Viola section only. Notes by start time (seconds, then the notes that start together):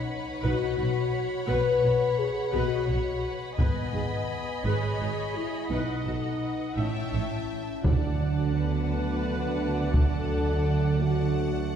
Already playing: C#5
0.44 B4
0.78 F#4
1.48 B4
1.84 F#4
2.54 B4
2.89 F#4
3.58 B4 D#5
3.94 G#4
4.66 B4
5.02 G#4
5.72 B4
6.07 F#4
6.78 E5
7.14 C#5
7.85 D5 F#5